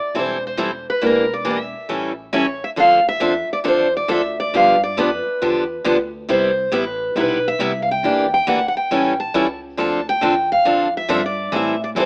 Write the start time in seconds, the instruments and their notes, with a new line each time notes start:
Already playing: steel-string acoustic guitar D5
0.15 upright bass E1, steel-string acoustic guitar E3 G3 C4 E4 A4
0.19 steel-string acoustic guitar C5
0.47 steel-string acoustic guitar C5
0.57 steel-string acoustic guitar E3 G3 C4 E4 A4
0.90 steel-string acoustic guitar B4
1.01 upright bass E1, steel-string acoustic guitar E3 A#3 D4 G4
1.06 steel-string acoustic guitar A#4
1.33 steel-string acoustic guitar D5
1.45 steel-string acoustic guitar E3 A#3 D4 G4
1.50 steel-string acoustic guitar E5
1.89 upright bass A1, steel-string acoustic guitar E3 G3 C#4 E4 A4
2.33 steel-string acoustic guitar E3 G3 C#4 E4 A4 C#5
2.64 steel-string acoustic guitar E5
2.76 upright bass D2, steel-string acoustic guitar D3 F3 C4 D4 A4 F5
3.08 steel-string acoustic guitar E5
3.20 upright bass F2, steel-string acoustic guitar D3 F3 C4 D4 A4
3.49 steel-string acoustic guitar D5, muted upright bass stroke
3.64 upright bass E2, steel-string acoustic guitar D3 F3 C4 D4 A4
3.68 steel-string acoustic guitar C5
3.97 steel-string acoustic guitar D5
4.08 upright bass D2, steel-string acoustic guitar D3 F3 C4 D4 A4 E5
4.40 steel-string acoustic guitar D5
4.54 upright bass G2, steel-string acoustic guitar D3 F3 B3 D4 G4 F5
4.83 steel-string acoustic guitar D5
4.97 upright bass F2, steel-string acoustic guitar D3 F3 B3 D4 G4 B4
5.27 muted upright bass stroke
5.42 upright bass E2, steel-string acoustic guitar D3 F3 B3 D4 G4
5.84 upright bass D2, steel-string acoustic guitar D3 F3 B3 D4 G4
6.29 upright bass C2, steel-string acoustic guitar C3 G3 B3 E4 G4 C5
6.72 upright bass A1, steel-string acoustic guitar C3 G3 B3 E4 G4 B4
7.15 upright bass B1, steel-string acoustic guitar C3 G3 B3 E4 G4
7.20 steel-string acoustic guitar B4
7.48 steel-string acoustic guitar E5
7.59 upright bass C2, steel-string acoustic guitar C3 G3 B3 E4 G4
7.82 steel-string acoustic guitar F5
7.91 steel-string acoustic guitar G5
8.03 upright bass E2, steel-string acoustic guitar E3 A#3 D4 G4
8.34 steel-string acoustic guitar G5
8.47 upright bass D2, steel-string acoustic guitar E3 A#3 D4 G4 F#5
8.68 steel-string acoustic guitar F#5
8.74 steel-string acoustic guitar G5, muted upright bass stroke
8.91 upright bass A1, steel-string acoustic guitar E3 G3 C#4 E4 A4
9.20 steel-string acoustic guitar A5
9.34 upright bass C#2, steel-string acoustic guitar E3 G3 C#4 E4 A4
9.77 upright bass D2, steel-string acoustic guitar D3 F3 C4 D4 A4 A5
10.09 steel-string acoustic guitar G5
10.21 upright bass E2, steel-string acoustic guitar D3 F3 C4 D4 A4
10.52 steel-string acoustic guitar F5
10.65 upright bass F2, steel-string acoustic guitar D3 F3 C4 D4 A4
10.97 steel-string acoustic guitar E5
11.09 upright bass G2, steel-string acoustic guitar D3 F3 C4 D4 A4
11.26 steel-string acoustic guitar D5
11.52 upright bass A2, steel-string acoustic guitar E3 G3 C4 E4 A4
11.56 steel-string acoustic guitar E5
11.84 steel-string acoustic guitar D5
11.95 upright bass E2, steel-string acoustic guitar E3 G3 C4 E4 A4
12.00 steel-string acoustic guitar C5